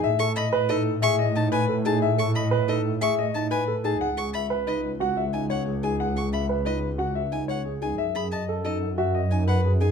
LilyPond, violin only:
\new Staff \with { instrumentName = "Violin" } { \time 6/4 \key a \lydian \tempo 4 = 181 r8 cis'''8 b''8 r8 dis''8 r8 cis'''8 r8 a''8 gis''8 r8 a''8 | r8 cis'''8 b''8 r8 dis''8 r8 cis'''8 r8 a''8 gis''8 r8 a''8 | r8 cis'''8 b''8 r8 dis''8 r4. gis''8 fis''8 r8 gis''8 | r8 cis'''8 b''8 r8 dis''8 r4. gis''8 fis''8 r8 gis''8 |
r8 b''8 a''8 r8 dis''8 r4. gis''8 fis''8 r8 gis''8 | }